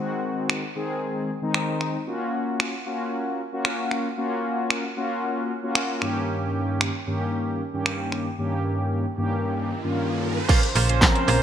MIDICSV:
0, 0, Header, 1, 8, 480
1, 0, Start_track
1, 0, Tempo, 526316
1, 1889, Time_signature, 4, 2, 24, 8
1, 10421, End_track
2, 0, Start_track
2, 0, Title_t, "Clean electric guitar"
2, 0, Program_c, 0, 27
2, 9564, Note_on_c, 0, 58, 84
2, 9570, Note_on_c, 0, 61, 88
2, 9575, Note_on_c, 0, 65, 87
2, 9579, Note_on_c, 0, 72, 88
2, 9682, Note_off_c, 0, 72, 0
2, 9688, Note_off_c, 0, 65, 0
2, 9692, Note_off_c, 0, 61, 0
2, 9746, Note_off_c, 0, 58, 0
2, 9805, Note_on_c, 0, 58, 67
2, 9810, Note_on_c, 0, 61, 70
2, 9815, Note_on_c, 0, 65, 69
2, 9819, Note_on_c, 0, 72, 77
2, 9921, Note_off_c, 0, 72, 0
2, 9926, Note_off_c, 0, 65, 0
2, 9931, Note_off_c, 0, 61, 0
2, 9932, Note_on_c, 0, 72, 72
2, 9935, Note_off_c, 0, 58, 0
2, 9937, Note_on_c, 0, 65, 64
2, 9942, Note_on_c, 0, 61, 61
2, 9946, Note_on_c, 0, 58, 62
2, 10034, Note_off_c, 0, 58, 0
2, 10038, Note_off_c, 0, 61, 0
2, 10041, Note_off_c, 0, 65, 0
2, 10045, Note_off_c, 0, 72, 0
2, 10284, Note_on_c, 0, 58, 83
2, 10290, Note_on_c, 0, 61, 89
2, 10294, Note_on_c, 0, 65, 90
2, 10298, Note_on_c, 0, 72, 95
2, 10402, Note_off_c, 0, 72, 0
2, 10407, Note_off_c, 0, 65, 0
2, 10412, Note_off_c, 0, 61, 0
2, 10421, Note_off_c, 0, 58, 0
2, 10421, End_track
3, 0, Start_track
3, 0, Title_t, "Analog polysynth"
3, 0, Program_c, 1, 90
3, 0, Note_on_c, 1, 51, 99
3, 0, Note_on_c, 1, 56, 91
3, 0, Note_on_c, 1, 60, 89
3, 0, Note_on_c, 1, 66, 103
3, 577, Note_off_c, 1, 51, 0
3, 578, Note_off_c, 1, 56, 0
3, 579, Note_off_c, 1, 60, 0
3, 579, Note_off_c, 1, 66, 0
3, 688, Note_on_c, 1, 51, 99
3, 689, Note_on_c, 1, 56, 87
3, 690, Note_on_c, 1, 60, 85
3, 692, Note_on_c, 1, 68, 107
3, 1191, Note_off_c, 1, 51, 0
3, 1192, Note_off_c, 1, 56, 0
3, 1193, Note_off_c, 1, 60, 0
3, 1194, Note_off_c, 1, 68, 0
3, 1294, Note_on_c, 1, 51, 96
3, 1295, Note_on_c, 1, 56, 82
3, 1297, Note_on_c, 1, 60, 84
3, 1299, Note_on_c, 1, 63, 105
3, 1795, Note_off_c, 1, 51, 0
3, 1796, Note_off_c, 1, 56, 0
3, 1797, Note_off_c, 1, 60, 0
3, 1798, Note_off_c, 1, 63, 0
3, 1888, Note_on_c, 1, 65, 86
3, 1889, Note_on_c, 1, 58, 81
3, 1891, Note_on_c, 1, 61, 79
3, 1892, Note_on_c, 1, 66, 94
3, 2498, Note_off_c, 1, 58, 0
3, 2498, Note_off_c, 1, 65, 0
3, 2499, Note_off_c, 1, 61, 0
3, 2500, Note_off_c, 1, 66, 0
3, 2606, Note_on_c, 1, 65, 90
3, 2608, Note_on_c, 1, 58, 81
3, 2609, Note_on_c, 1, 61, 79
3, 2611, Note_on_c, 1, 66, 96
3, 3111, Note_off_c, 1, 58, 0
3, 3111, Note_off_c, 1, 65, 0
3, 3112, Note_off_c, 1, 61, 0
3, 3113, Note_off_c, 1, 66, 0
3, 3214, Note_on_c, 1, 65, 91
3, 3216, Note_on_c, 1, 58, 81
3, 3217, Note_on_c, 1, 61, 82
3, 3219, Note_on_c, 1, 66, 100
3, 3715, Note_off_c, 1, 65, 0
3, 3716, Note_off_c, 1, 58, 0
3, 3717, Note_off_c, 1, 61, 0
3, 3718, Note_off_c, 1, 66, 0
3, 3807, Note_on_c, 1, 65, 102
3, 3808, Note_on_c, 1, 58, 92
3, 3809, Note_on_c, 1, 61, 89
3, 3811, Note_on_c, 1, 66, 103
3, 4417, Note_off_c, 1, 58, 0
3, 4417, Note_off_c, 1, 65, 0
3, 4418, Note_off_c, 1, 61, 0
3, 4419, Note_off_c, 1, 66, 0
3, 4528, Note_on_c, 1, 65, 96
3, 4529, Note_on_c, 1, 58, 90
3, 4531, Note_on_c, 1, 61, 90
3, 4532, Note_on_c, 1, 66, 110
3, 5031, Note_off_c, 1, 65, 0
3, 5032, Note_off_c, 1, 58, 0
3, 5033, Note_off_c, 1, 61, 0
3, 5034, Note_off_c, 1, 66, 0
3, 5133, Note_on_c, 1, 65, 95
3, 5135, Note_on_c, 1, 58, 83
3, 5136, Note_on_c, 1, 61, 88
3, 5138, Note_on_c, 1, 66, 101
3, 5477, Note_off_c, 1, 58, 0
3, 5478, Note_off_c, 1, 61, 0
3, 5486, Note_on_c, 1, 43, 88
3, 5487, Note_off_c, 1, 65, 0
3, 5487, Note_on_c, 1, 51, 87
3, 5488, Note_on_c, 1, 58, 84
3, 5489, Note_on_c, 1, 61, 86
3, 5490, Note_off_c, 1, 66, 0
3, 5491, Note_on_c, 1, 67, 104
3, 6295, Note_off_c, 1, 43, 0
3, 6296, Note_off_c, 1, 51, 0
3, 6297, Note_off_c, 1, 58, 0
3, 6297, Note_off_c, 1, 61, 0
3, 6298, Note_off_c, 1, 67, 0
3, 6445, Note_on_c, 1, 43, 85
3, 6446, Note_on_c, 1, 51, 83
3, 6448, Note_on_c, 1, 58, 84
3, 6449, Note_on_c, 1, 61, 82
3, 6450, Note_on_c, 1, 67, 92
3, 6950, Note_off_c, 1, 43, 0
3, 6951, Note_off_c, 1, 51, 0
3, 6951, Note_off_c, 1, 58, 0
3, 6952, Note_off_c, 1, 61, 0
3, 6952, Note_off_c, 1, 67, 0
3, 7052, Note_on_c, 1, 43, 93
3, 7053, Note_on_c, 1, 51, 87
3, 7054, Note_on_c, 1, 58, 80
3, 7055, Note_on_c, 1, 61, 81
3, 7057, Note_on_c, 1, 67, 103
3, 7554, Note_off_c, 1, 43, 0
3, 7555, Note_off_c, 1, 51, 0
3, 7556, Note_off_c, 1, 58, 0
3, 7556, Note_off_c, 1, 61, 0
3, 7557, Note_off_c, 1, 67, 0
3, 7645, Note_on_c, 1, 43, 96
3, 7647, Note_on_c, 1, 51, 88
3, 7648, Note_on_c, 1, 58, 94
3, 7649, Note_on_c, 1, 61, 86
3, 7650, Note_on_c, 1, 67, 109
3, 8256, Note_off_c, 1, 43, 0
3, 8257, Note_off_c, 1, 51, 0
3, 8257, Note_off_c, 1, 58, 0
3, 8258, Note_off_c, 1, 61, 0
3, 8258, Note_off_c, 1, 67, 0
3, 8366, Note_on_c, 1, 43, 99
3, 8367, Note_on_c, 1, 51, 90
3, 8368, Note_on_c, 1, 58, 91
3, 8369, Note_on_c, 1, 61, 85
3, 8370, Note_on_c, 1, 67, 107
3, 8870, Note_off_c, 1, 43, 0
3, 8871, Note_off_c, 1, 51, 0
3, 8871, Note_off_c, 1, 58, 0
3, 8872, Note_off_c, 1, 61, 0
3, 8873, Note_off_c, 1, 67, 0
3, 8974, Note_on_c, 1, 43, 96
3, 8975, Note_on_c, 1, 51, 89
3, 8976, Note_on_c, 1, 58, 87
3, 8977, Note_on_c, 1, 61, 89
3, 8979, Note_on_c, 1, 65, 102
3, 9475, Note_off_c, 1, 43, 0
3, 9476, Note_off_c, 1, 51, 0
3, 9476, Note_off_c, 1, 58, 0
3, 9477, Note_off_c, 1, 61, 0
3, 9478, Note_off_c, 1, 65, 0
3, 10047, Note_on_c, 1, 53, 92
3, 10048, Note_on_c, 1, 60, 80
3, 10050, Note_on_c, 1, 61, 84
3, 10051, Note_on_c, 1, 70, 97
3, 10421, Note_off_c, 1, 53, 0
3, 10421, Note_off_c, 1, 60, 0
3, 10421, Note_off_c, 1, 61, 0
3, 10421, Note_off_c, 1, 70, 0
3, 10421, End_track
4, 0, Start_track
4, 0, Title_t, "Brass ensemble"
4, 0, Program_c, 2, 61
4, 9569, Note_on_c, 2, 49, 78
4, 9569, Note_on_c, 2, 53, 72
4, 9570, Note_on_c, 2, 58, 74
4, 9570, Note_on_c, 2, 65, 87
4, 9570, Note_on_c, 2, 72, 73
4, 10421, Note_off_c, 2, 49, 0
4, 10421, Note_off_c, 2, 53, 0
4, 10421, Note_off_c, 2, 58, 0
4, 10421, Note_off_c, 2, 65, 0
4, 10421, Note_off_c, 2, 72, 0
4, 10421, End_track
5, 0, Start_track
5, 0, Title_t, "FM bass"
5, 0, Program_c, 3, 39
5, 9808, Note_on_c, 3, 34, 104
5, 10121, Note_off_c, 3, 34, 0
5, 10289, Note_on_c, 3, 34, 101
5, 10421, Note_off_c, 3, 34, 0
5, 10421, End_track
6, 0, Start_track
6, 0, Title_t, "Riser"
6, 0, Program_c, 4, 103
6, 7648, Note_on_c, 4, 60, 79
6, 9568, Note_off_c, 4, 60, 0
6, 10421, End_track
7, 0, Start_track
7, 0, Title_t, "Muted clean electric guitar strokes"
7, 9693, Note_on_c, 9, 29, 50
7, 9784, Note_off_c, 9, 29, 0
7, 10172, Note_on_c, 9, 29, 55
7, 10264, Note_off_c, 9, 29, 0
7, 10421, End_track
8, 0, Start_track
8, 0, Title_t, "Drums"
8, 452, Note_on_c, 9, 26, 102
8, 543, Note_off_c, 9, 26, 0
8, 1408, Note_on_c, 9, 26, 108
8, 1500, Note_off_c, 9, 26, 0
8, 1649, Note_on_c, 9, 26, 54
8, 1741, Note_off_c, 9, 26, 0
8, 2371, Note_on_c, 9, 26, 97
8, 2462, Note_off_c, 9, 26, 0
8, 3328, Note_on_c, 9, 26, 111
8, 3419, Note_off_c, 9, 26, 0
8, 3569, Note_on_c, 9, 26, 57
8, 3660, Note_off_c, 9, 26, 0
8, 4291, Note_on_c, 9, 26, 98
8, 4382, Note_off_c, 9, 26, 0
8, 5247, Note_on_c, 9, 26, 116
8, 5338, Note_off_c, 9, 26, 0
8, 5488, Note_on_c, 9, 26, 58
8, 5580, Note_off_c, 9, 26, 0
8, 6210, Note_on_c, 9, 26, 100
8, 6301, Note_off_c, 9, 26, 0
8, 7167, Note_on_c, 9, 26, 106
8, 7259, Note_off_c, 9, 26, 0
8, 7408, Note_on_c, 9, 26, 58
8, 7500, Note_off_c, 9, 26, 0
8, 9567, Note_on_c, 9, 54, 53
8, 9568, Note_on_c, 9, 49, 101
8, 9569, Note_on_c, 9, 36, 110
8, 9658, Note_off_c, 9, 54, 0
8, 9659, Note_off_c, 9, 49, 0
8, 9660, Note_off_c, 9, 36, 0
8, 9696, Note_on_c, 9, 42, 53
8, 9696, Note_on_c, 9, 54, 33
8, 9787, Note_off_c, 9, 42, 0
8, 9788, Note_off_c, 9, 54, 0
8, 9809, Note_on_c, 9, 46, 76
8, 9810, Note_on_c, 9, 54, 56
8, 9900, Note_off_c, 9, 46, 0
8, 9901, Note_off_c, 9, 54, 0
8, 9936, Note_on_c, 9, 42, 75
8, 10027, Note_off_c, 9, 42, 0
8, 10046, Note_on_c, 9, 36, 117
8, 10047, Note_on_c, 9, 54, 84
8, 10051, Note_on_c, 9, 39, 112
8, 10054, Note_on_c, 9, 38, 87
8, 10137, Note_off_c, 9, 36, 0
8, 10138, Note_off_c, 9, 54, 0
8, 10142, Note_off_c, 9, 39, 0
8, 10146, Note_off_c, 9, 38, 0
8, 10174, Note_on_c, 9, 42, 44
8, 10265, Note_off_c, 9, 42, 0
8, 10288, Note_on_c, 9, 46, 77
8, 10290, Note_on_c, 9, 54, 47
8, 10379, Note_off_c, 9, 46, 0
8, 10381, Note_off_c, 9, 54, 0
8, 10421, End_track
0, 0, End_of_file